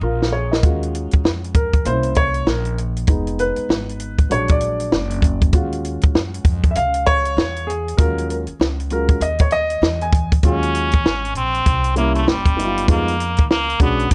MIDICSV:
0, 0, Header, 1, 6, 480
1, 0, Start_track
1, 0, Key_signature, -6, "minor"
1, 0, Tempo, 612245
1, 499, Time_signature, 4, 2, 24, 8
1, 11088, End_track
2, 0, Start_track
2, 0, Title_t, "Upright piano"
2, 0, Program_c, 0, 0
2, 22, Note_on_c, 0, 70, 65
2, 26, Note_on_c, 0, 65, 57
2, 249, Note_off_c, 0, 70, 0
2, 251, Note_off_c, 0, 65, 0
2, 255, Note_on_c, 0, 73, 69
2, 259, Note_on_c, 0, 68, 56
2, 400, Note_off_c, 0, 73, 0
2, 402, Note_off_c, 0, 68, 0
2, 404, Note_on_c, 0, 75, 61
2, 410, Note_on_c, 0, 70, 55
2, 493, Note_on_c, 0, 66, 53
2, 496, Note_on_c, 0, 56, 50
2, 498, Note_on_c, 0, 61, 48
2, 502, Note_on_c, 0, 65, 57
2, 635, Note_off_c, 0, 75, 0
2, 638, Note_off_c, 0, 70, 0
2, 1219, Note_on_c, 0, 70, 80
2, 1425, Note_off_c, 0, 66, 0
2, 1426, Note_off_c, 0, 56, 0
2, 1427, Note_off_c, 0, 61, 0
2, 1429, Note_off_c, 0, 65, 0
2, 1454, Note_on_c, 0, 58, 53
2, 1461, Note_on_c, 0, 61, 43
2, 1462, Note_on_c, 0, 72, 90
2, 1466, Note_off_c, 0, 70, 0
2, 1466, Note_on_c, 0, 64, 60
2, 1699, Note_on_c, 0, 73, 108
2, 1708, Note_off_c, 0, 72, 0
2, 1946, Note_off_c, 0, 73, 0
2, 1946, Note_on_c, 0, 70, 71
2, 2145, Note_off_c, 0, 58, 0
2, 2149, Note_off_c, 0, 61, 0
2, 2151, Note_off_c, 0, 64, 0
2, 2166, Note_off_c, 0, 70, 0
2, 2416, Note_on_c, 0, 56, 54
2, 2417, Note_on_c, 0, 59, 48
2, 2422, Note_on_c, 0, 63, 56
2, 2663, Note_on_c, 0, 71, 94
2, 3346, Note_off_c, 0, 56, 0
2, 3347, Note_off_c, 0, 59, 0
2, 3349, Note_off_c, 0, 63, 0
2, 3370, Note_on_c, 0, 54, 55
2, 3377, Note_on_c, 0, 56, 45
2, 3380, Note_on_c, 0, 62, 57
2, 3386, Note_on_c, 0, 73, 91
2, 3403, Note_off_c, 0, 71, 0
2, 3536, Note_on_c, 0, 74, 91
2, 3537, Note_off_c, 0, 73, 0
2, 4063, Note_off_c, 0, 54, 0
2, 4067, Note_off_c, 0, 56, 0
2, 4068, Note_off_c, 0, 62, 0
2, 4222, Note_off_c, 0, 74, 0
2, 4336, Note_on_c, 0, 66, 55
2, 4338, Note_on_c, 0, 56, 49
2, 4343, Note_on_c, 0, 61, 49
2, 4346, Note_on_c, 0, 65, 59
2, 5259, Note_on_c, 0, 76, 74
2, 5300, Note_off_c, 0, 76, 0
2, 5303, Note_on_c, 0, 77, 96
2, 5539, Note_on_c, 0, 73, 121
2, 5548, Note_off_c, 0, 77, 0
2, 6013, Note_on_c, 0, 68, 90
2, 6034, Note_off_c, 0, 73, 0
2, 6226, Note_off_c, 0, 66, 0
2, 6228, Note_off_c, 0, 56, 0
2, 6230, Note_off_c, 0, 61, 0
2, 6231, Note_off_c, 0, 65, 0
2, 6251, Note_on_c, 0, 70, 88
2, 6259, Note_on_c, 0, 54, 57
2, 6261, Note_on_c, 0, 56, 50
2, 6262, Note_on_c, 0, 61, 50
2, 6263, Note_off_c, 0, 68, 0
2, 6266, Note_on_c, 0, 65, 61
2, 6486, Note_off_c, 0, 70, 0
2, 6498, Note_on_c, 0, 70, 73
2, 6552, Note_off_c, 0, 70, 0
2, 6601, Note_off_c, 0, 54, 0
2, 6602, Note_off_c, 0, 56, 0
2, 6603, Note_off_c, 0, 61, 0
2, 6605, Note_off_c, 0, 65, 0
2, 6984, Note_on_c, 0, 56, 50
2, 6985, Note_on_c, 0, 54, 53
2, 6989, Note_on_c, 0, 61, 44
2, 6991, Note_on_c, 0, 65, 54
2, 6998, Note_on_c, 0, 70, 78
2, 7198, Note_off_c, 0, 54, 0
2, 7198, Note_off_c, 0, 56, 0
2, 7201, Note_off_c, 0, 61, 0
2, 7202, Note_off_c, 0, 65, 0
2, 7231, Note_on_c, 0, 75, 83
2, 7235, Note_off_c, 0, 70, 0
2, 7365, Note_off_c, 0, 75, 0
2, 7378, Note_on_c, 0, 73, 79
2, 7466, Note_off_c, 0, 73, 0
2, 7467, Note_on_c, 0, 75, 113
2, 7856, Note_on_c, 0, 80, 89
2, 7865, Note_off_c, 0, 75, 0
2, 8076, Note_off_c, 0, 80, 0
2, 8181, Note_on_c, 0, 54, 63
2, 8184, Note_on_c, 0, 56, 61
2, 8187, Note_on_c, 0, 61, 60
2, 8193, Note_on_c, 0, 65, 72
2, 8540, Note_off_c, 0, 54, 0
2, 8542, Note_off_c, 0, 56, 0
2, 8543, Note_off_c, 0, 61, 0
2, 8546, Note_off_c, 0, 65, 0
2, 9375, Note_on_c, 0, 55, 76
2, 9381, Note_on_c, 0, 58, 64
2, 9384, Note_on_c, 0, 61, 67
2, 9388, Note_on_c, 0, 64, 82
2, 9563, Note_off_c, 0, 55, 0
2, 9566, Note_off_c, 0, 58, 0
2, 9568, Note_off_c, 0, 61, 0
2, 9570, Note_off_c, 0, 64, 0
2, 9853, Note_on_c, 0, 55, 58
2, 9856, Note_on_c, 0, 59, 51
2, 9858, Note_on_c, 0, 63, 51
2, 9864, Note_on_c, 0, 64, 53
2, 9916, Note_on_c, 0, 65, 66
2, 9926, Note_off_c, 0, 64, 0
2, 10083, Note_off_c, 0, 59, 0
2, 10085, Note_off_c, 0, 63, 0
2, 10089, Note_off_c, 0, 65, 0
2, 10090, Note_on_c, 0, 56, 70
2, 10094, Note_on_c, 0, 59, 60
2, 10097, Note_on_c, 0, 63, 63
2, 10100, Note_on_c, 0, 65, 73
2, 10216, Note_off_c, 0, 55, 0
2, 10281, Note_off_c, 0, 56, 0
2, 10283, Note_off_c, 0, 59, 0
2, 10284, Note_off_c, 0, 63, 0
2, 10286, Note_off_c, 0, 65, 0
2, 10816, Note_on_c, 0, 56, 67
2, 10821, Note_on_c, 0, 61, 63
2, 10826, Note_on_c, 0, 62, 64
2, 10828, Note_on_c, 0, 66, 71
2, 11004, Note_off_c, 0, 56, 0
2, 11006, Note_off_c, 0, 61, 0
2, 11009, Note_off_c, 0, 62, 0
2, 11010, Note_off_c, 0, 66, 0
2, 11088, End_track
3, 0, Start_track
3, 0, Title_t, "Trombone"
3, 0, Program_c, 1, 57
3, 8194, Note_on_c, 1, 61, 91
3, 8875, Note_off_c, 1, 61, 0
3, 8915, Note_on_c, 1, 60, 97
3, 9356, Note_off_c, 1, 60, 0
3, 9388, Note_on_c, 1, 58, 84
3, 9524, Note_off_c, 1, 58, 0
3, 9533, Note_on_c, 1, 57, 83
3, 9635, Note_on_c, 1, 55, 93
3, 9647, Note_off_c, 1, 57, 0
3, 10107, Note_off_c, 1, 55, 0
3, 10117, Note_on_c, 1, 58, 87
3, 10557, Note_off_c, 1, 58, 0
3, 10597, Note_on_c, 1, 58, 99
3, 10812, Note_off_c, 1, 58, 0
3, 10841, Note_on_c, 1, 59, 90
3, 11054, Note_off_c, 1, 59, 0
3, 11088, End_track
4, 0, Start_track
4, 0, Title_t, "Upright bass"
4, 0, Program_c, 2, 32
4, 10, Note_on_c, 2, 34, 101
4, 470, Note_off_c, 2, 34, 0
4, 495, Note_on_c, 2, 39, 94
4, 868, Note_off_c, 2, 39, 0
4, 971, Note_on_c, 2, 41, 76
4, 1452, Note_on_c, 2, 36, 96
4, 1464, Note_off_c, 2, 41, 0
4, 1912, Note_off_c, 2, 36, 0
4, 1932, Note_on_c, 2, 34, 92
4, 2392, Note_off_c, 2, 34, 0
4, 2413, Note_on_c, 2, 29, 99
4, 2787, Note_off_c, 2, 29, 0
4, 2893, Note_on_c, 2, 32, 79
4, 3352, Note_off_c, 2, 32, 0
4, 3378, Note_on_c, 2, 34, 97
4, 3835, Note_off_c, 2, 34, 0
4, 3858, Note_on_c, 2, 30, 99
4, 4315, Note_off_c, 2, 30, 0
4, 4336, Note_on_c, 2, 39, 104
4, 4708, Note_off_c, 2, 39, 0
4, 4817, Note_on_c, 2, 42, 70
4, 5046, Note_off_c, 2, 42, 0
4, 5054, Note_on_c, 2, 41, 90
4, 5296, Note_on_c, 2, 37, 92
4, 5307, Note_off_c, 2, 41, 0
4, 5753, Note_off_c, 2, 37, 0
4, 5776, Note_on_c, 2, 40, 106
4, 6234, Note_off_c, 2, 40, 0
4, 6260, Note_on_c, 2, 39, 95
4, 6630, Note_off_c, 2, 39, 0
4, 6739, Note_on_c, 2, 37, 86
4, 7195, Note_off_c, 2, 37, 0
4, 7217, Note_on_c, 2, 39, 92
4, 7674, Note_off_c, 2, 39, 0
4, 7697, Note_on_c, 2, 40, 99
4, 8154, Note_off_c, 2, 40, 0
4, 8178, Note_on_c, 2, 39, 103
4, 8654, Note_on_c, 2, 32, 80
4, 8666, Note_off_c, 2, 39, 0
4, 8884, Note_off_c, 2, 32, 0
4, 8895, Note_on_c, 2, 34, 83
4, 9125, Note_off_c, 2, 34, 0
4, 9142, Note_on_c, 2, 36, 97
4, 9597, Note_off_c, 2, 36, 0
4, 9617, Note_on_c, 2, 30, 91
4, 10074, Note_off_c, 2, 30, 0
4, 10100, Note_on_c, 2, 41, 105
4, 10574, Note_off_c, 2, 41, 0
4, 10574, Note_on_c, 2, 37, 78
4, 10805, Note_off_c, 2, 37, 0
4, 10816, Note_on_c, 2, 35, 96
4, 11045, Note_off_c, 2, 35, 0
4, 11062, Note_on_c, 2, 34, 96
4, 11088, Note_off_c, 2, 34, 0
4, 11088, End_track
5, 0, Start_track
5, 0, Title_t, "Muted upright bass strokes"
5, 2803, Note_on_c, 9, 29, 46
5, 2881, Note_off_c, 9, 29, 0
5, 6649, Note_on_c, 9, 29, 48
5, 6727, Note_off_c, 9, 29, 0
5, 11088, End_track
6, 0, Start_track
6, 0, Title_t, "Drums"
6, 174, Note_on_c, 9, 38, 66
6, 253, Note_off_c, 9, 38, 0
6, 415, Note_on_c, 9, 38, 83
6, 493, Note_off_c, 9, 38, 0
6, 494, Note_on_c, 9, 42, 77
6, 496, Note_on_c, 9, 36, 106
6, 573, Note_off_c, 9, 42, 0
6, 574, Note_off_c, 9, 36, 0
6, 649, Note_on_c, 9, 42, 53
6, 728, Note_off_c, 9, 42, 0
6, 742, Note_on_c, 9, 42, 69
6, 820, Note_off_c, 9, 42, 0
6, 872, Note_on_c, 9, 42, 46
6, 890, Note_on_c, 9, 36, 84
6, 950, Note_off_c, 9, 42, 0
6, 968, Note_off_c, 9, 36, 0
6, 981, Note_on_c, 9, 38, 116
6, 1060, Note_off_c, 9, 38, 0
6, 1131, Note_on_c, 9, 42, 45
6, 1209, Note_off_c, 9, 42, 0
6, 1213, Note_on_c, 9, 36, 92
6, 1213, Note_on_c, 9, 42, 68
6, 1291, Note_off_c, 9, 36, 0
6, 1291, Note_off_c, 9, 42, 0
6, 1360, Note_on_c, 9, 36, 83
6, 1361, Note_on_c, 9, 42, 43
6, 1438, Note_off_c, 9, 36, 0
6, 1439, Note_off_c, 9, 42, 0
6, 1452, Note_on_c, 9, 42, 94
6, 1531, Note_off_c, 9, 42, 0
6, 1592, Note_on_c, 9, 42, 50
6, 1671, Note_off_c, 9, 42, 0
6, 1685, Note_on_c, 9, 42, 65
6, 1698, Note_on_c, 9, 36, 80
6, 1764, Note_off_c, 9, 42, 0
6, 1776, Note_off_c, 9, 36, 0
6, 1836, Note_on_c, 9, 42, 46
6, 1914, Note_off_c, 9, 42, 0
6, 1936, Note_on_c, 9, 38, 106
6, 2014, Note_off_c, 9, 38, 0
6, 2077, Note_on_c, 9, 42, 50
6, 2156, Note_off_c, 9, 42, 0
6, 2181, Note_on_c, 9, 42, 73
6, 2259, Note_off_c, 9, 42, 0
6, 2325, Note_on_c, 9, 42, 55
6, 2403, Note_off_c, 9, 42, 0
6, 2407, Note_on_c, 9, 42, 79
6, 2414, Note_on_c, 9, 36, 106
6, 2486, Note_off_c, 9, 42, 0
6, 2492, Note_off_c, 9, 36, 0
6, 2563, Note_on_c, 9, 42, 50
6, 2642, Note_off_c, 9, 42, 0
6, 2657, Note_on_c, 9, 42, 68
6, 2736, Note_off_c, 9, 42, 0
6, 2792, Note_on_c, 9, 42, 46
6, 2871, Note_off_c, 9, 42, 0
6, 2902, Note_on_c, 9, 38, 121
6, 2981, Note_off_c, 9, 38, 0
6, 3052, Note_on_c, 9, 42, 50
6, 3130, Note_off_c, 9, 42, 0
6, 3133, Note_on_c, 9, 42, 69
6, 3211, Note_off_c, 9, 42, 0
6, 3281, Note_on_c, 9, 36, 85
6, 3283, Note_on_c, 9, 42, 44
6, 3360, Note_off_c, 9, 36, 0
6, 3361, Note_off_c, 9, 42, 0
6, 3377, Note_on_c, 9, 42, 94
6, 3455, Note_off_c, 9, 42, 0
6, 3513, Note_on_c, 9, 42, 52
6, 3525, Note_on_c, 9, 36, 96
6, 3592, Note_off_c, 9, 42, 0
6, 3603, Note_off_c, 9, 36, 0
6, 3611, Note_on_c, 9, 42, 69
6, 3689, Note_off_c, 9, 42, 0
6, 3761, Note_on_c, 9, 42, 54
6, 3840, Note_off_c, 9, 42, 0
6, 3859, Note_on_c, 9, 38, 111
6, 3938, Note_off_c, 9, 38, 0
6, 4002, Note_on_c, 9, 42, 53
6, 4080, Note_off_c, 9, 42, 0
6, 4094, Note_on_c, 9, 36, 90
6, 4108, Note_on_c, 9, 42, 71
6, 4173, Note_off_c, 9, 36, 0
6, 4186, Note_off_c, 9, 42, 0
6, 4247, Note_on_c, 9, 36, 91
6, 4250, Note_on_c, 9, 42, 49
6, 4325, Note_off_c, 9, 36, 0
6, 4328, Note_off_c, 9, 42, 0
6, 4333, Note_on_c, 9, 42, 81
6, 4336, Note_on_c, 9, 36, 111
6, 4411, Note_off_c, 9, 42, 0
6, 4415, Note_off_c, 9, 36, 0
6, 4488, Note_on_c, 9, 42, 53
6, 4567, Note_off_c, 9, 42, 0
6, 4583, Note_on_c, 9, 42, 68
6, 4662, Note_off_c, 9, 42, 0
6, 4716, Note_on_c, 9, 42, 47
6, 4732, Note_on_c, 9, 36, 90
6, 4794, Note_off_c, 9, 42, 0
6, 4810, Note_off_c, 9, 36, 0
6, 4823, Note_on_c, 9, 38, 121
6, 4902, Note_off_c, 9, 38, 0
6, 4972, Note_on_c, 9, 42, 47
6, 5050, Note_off_c, 9, 42, 0
6, 5054, Note_on_c, 9, 42, 68
6, 5055, Note_on_c, 9, 36, 94
6, 5133, Note_off_c, 9, 36, 0
6, 5133, Note_off_c, 9, 42, 0
6, 5203, Note_on_c, 9, 36, 87
6, 5204, Note_on_c, 9, 42, 45
6, 5281, Note_off_c, 9, 36, 0
6, 5282, Note_off_c, 9, 42, 0
6, 5295, Note_on_c, 9, 42, 99
6, 5374, Note_off_c, 9, 42, 0
6, 5439, Note_on_c, 9, 42, 54
6, 5517, Note_off_c, 9, 42, 0
6, 5536, Note_on_c, 9, 42, 70
6, 5543, Note_on_c, 9, 36, 83
6, 5614, Note_off_c, 9, 42, 0
6, 5622, Note_off_c, 9, 36, 0
6, 5685, Note_on_c, 9, 42, 54
6, 5764, Note_off_c, 9, 42, 0
6, 5787, Note_on_c, 9, 38, 108
6, 5865, Note_off_c, 9, 38, 0
6, 5930, Note_on_c, 9, 42, 50
6, 6009, Note_off_c, 9, 42, 0
6, 6034, Note_on_c, 9, 42, 74
6, 6113, Note_off_c, 9, 42, 0
6, 6178, Note_on_c, 9, 42, 52
6, 6257, Note_off_c, 9, 42, 0
6, 6260, Note_on_c, 9, 36, 119
6, 6261, Note_on_c, 9, 42, 82
6, 6339, Note_off_c, 9, 36, 0
6, 6340, Note_off_c, 9, 42, 0
6, 6415, Note_on_c, 9, 42, 56
6, 6493, Note_off_c, 9, 42, 0
6, 6508, Note_on_c, 9, 42, 68
6, 6586, Note_off_c, 9, 42, 0
6, 6639, Note_on_c, 9, 42, 46
6, 6717, Note_off_c, 9, 42, 0
6, 6751, Note_on_c, 9, 38, 127
6, 6829, Note_off_c, 9, 38, 0
6, 6897, Note_on_c, 9, 42, 51
6, 6976, Note_off_c, 9, 42, 0
6, 6979, Note_on_c, 9, 42, 75
6, 7058, Note_off_c, 9, 42, 0
6, 7125, Note_on_c, 9, 36, 92
6, 7128, Note_on_c, 9, 42, 42
6, 7204, Note_off_c, 9, 36, 0
6, 7207, Note_off_c, 9, 42, 0
6, 7222, Note_on_c, 9, 42, 100
6, 7300, Note_off_c, 9, 42, 0
6, 7358, Note_on_c, 9, 42, 56
6, 7369, Note_on_c, 9, 36, 94
6, 7437, Note_off_c, 9, 42, 0
6, 7447, Note_off_c, 9, 36, 0
6, 7454, Note_on_c, 9, 42, 74
6, 7532, Note_off_c, 9, 42, 0
6, 7604, Note_on_c, 9, 42, 55
6, 7683, Note_off_c, 9, 42, 0
6, 7706, Note_on_c, 9, 38, 110
6, 7785, Note_off_c, 9, 38, 0
6, 7850, Note_on_c, 9, 42, 50
6, 7928, Note_off_c, 9, 42, 0
6, 7938, Note_on_c, 9, 36, 98
6, 7953, Note_on_c, 9, 42, 75
6, 8017, Note_off_c, 9, 36, 0
6, 8031, Note_off_c, 9, 42, 0
6, 8091, Note_on_c, 9, 36, 85
6, 8096, Note_on_c, 9, 42, 55
6, 8169, Note_off_c, 9, 36, 0
6, 8174, Note_off_c, 9, 42, 0
6, 8176, Note_on_c, 9, 42, 79
6, 8179, Note_on_c, 9, 36, 106
6, 8255, Note_off_c, 9, 42, 0
6, 8258, Note_off_c, 9, 36, 0
6, 8332, Note_on_c, 9, 42, 54
6, 8411, Note_off_c, 9, 42, 0
6, 8425, Note_on_c, 9, 42, 67
6, 8504, Note_off_c, 9, 42, 0
6, 8557, Note_on_c, 9, 42, 47
6, 8574, Note_on_c, 9, 36, 84
6, 8636, Note_off_c, 9, 42, 0
6, 8653, Note_off_c, 9, 36, 0
6, 8668, Note_on_c, 9, 38, 116
6, 8747, Note_off_c, 9, 38, 0
6, 8818, Note_on_c, 9, 42, 49
6, 8896, Note_off_c, 9, 42, 0
6, 8899, Note_on_c, 9, 42, 67
6, 8978, Note_off_c, 9, 42, 0
6, 9050, Note_on_c, 9, 42, 44
6, 9129, Note_off_c, 9, 42, 0
6, 9140, Note_on_c, 9, 42, 89
6, 9142, Note_on_c, 9, 36, 88
6, 9219, Note_off_c, 9, 42, 0
6, 9221, Note_off_c, 9, 36, 0
6, 9282, Note_on_c, 9, 42, 55
6, 9361, Note_off_c, 9, 42, 0
6, 9377, Note_on_c, 9, 42, 59
6, 9455, Note_off_c, 9, 42, 0
6, 9527, Note_on_c, 9, 42, 45
6, 9606, Note_off_c, 9, 42, 0
6, 9626, Note_on_c, 9, 38, 101
6, 9704, Note_off_c, 9, 38, 0
6, 9764, Note_on_c, 9, 36, 87
6, 9768, Note_on_c, 9, 42, 46
6, 9843, Note_off_c, 9, 36, 0
6, 9846, Note_off_c, 9, 42, 0
6, 9873, Note_on_c, 9, 42, 67
6, 9951, Note_off_c, 9, 42, 0
6, 10016, Note_on_c, 9, 42, 48
6, 10095, Note_off_c, 9, 42, 0
6, 10099, Note_on_c, 9, 42, 74
6, 10100, Note_on_c, 9, 36, 106
6, 10178, Note_off_c, 9, 36, 0
6, 10178, Note_off_c, 9, 42, 0
6, 10255, Note_on_c, 9, 42, 51
6, 10334, Note_off_c, 9, 42, 0
6, 10350, Note_on_c, 9, 42, 68
6, 10428, Note_off_c, 9, 42, 0
6, 10479, Note_on_c, 9, 42, 44
6, 10495, Note_on_c, 9, 36, 86
6, 10558, Note_off_c, 9, 42, 0
6, 10574, Note_off_c, 9, 36, 0
6, 10590, Note_on_c, 9, 38, 125
6, 10668, Note_off_c, 9, 38, 0
6, 10738, Note_on_c, 9, 42, 47
6, 10816, Note_off_c, 9, 42, 0
6, 10818, Note_on_c, 9, 36, 93
6, 10819, Note_on_c, 9, 42, 70
6, 10896, Note_off_c, 9, 36, 0
6, 10897, Note_off_c, 9, 42, 0
6, 10971, Note_on_c, 9, 42, 43
6, 11050, Note_off_c, 9, 42, 0
6, 11061, Note_on_c, 9, 42, 95
6, 11063, Note_on_c, 9, 36, 89
6, 11088, Note_off_c, 9, 36, 0
6, 11088, Note_off_c, 9, 42, 0
6, 11088, End_track
0, 0, End_of_file